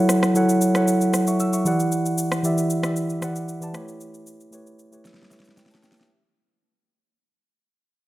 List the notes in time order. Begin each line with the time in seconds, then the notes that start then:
Already playing: F#3 E4 A4 C#5 E5 F#5 A5
0.09 cross-stick, shaker
0.23 cross-stick, shaker
0.34 F#3 E4 A4 C#5 F#5, shaker
0.49 shaker
0.61 shaker
0.74 F#3 E4 A4 C#5 F#5, cross-stick, shaker
0.88 shaker
1.01 shaker
1.14 cross-stick, shaker
1.27 E5 C#6, shaker
1.40 E6, shaker
1.53 E5 C#6, shaker
1.65 E3 E4 G4 D5 F#5, shaker
1.80 shaker
1.92 shaker
2.06 shaker
2.18 shaker
2.32 cross-stick, shaker
2.43 E3 E4 G4 D5 E5, shaker
2.58 shaker
2.70 shaker
2.83 E3 E4 G4 D5 E5, cross-stick, shaker
2.96 shaker
3.10 shaker
3.21 E3 E4 G4 D5 F#5, cross-stick, shaker
3.36 shaker
3.48 shaker
3.61 E3 E4 G4 D5 A5, shaker
3.74 A3 E4 G4 B4 C#5, cross-stick, shaker
3.88 shaker
4.01 shaker
4.14 shaker
4.27 shaker
4.40 shaker
4.51 A3 E4 G4 B4 C#5, shaker
4.67 shaker
4.79 shaker
4.91 A3 E4 G4 B4 C#5, shaker
5.05 snare, shaker
5.14 snare
5.22 snare
5.30 A3 E4 G4 B4 C#5, snare, shaker
5.40 snare
5.45 snare, shaker
5.57 B4 G5, snare, shaker
5.66 snare
5.71 C#5 A5, shaker
5.75 snare
5.83 B4 G5, snare, shaker
5.92 snare
5.97 G4 E5, snare, shaker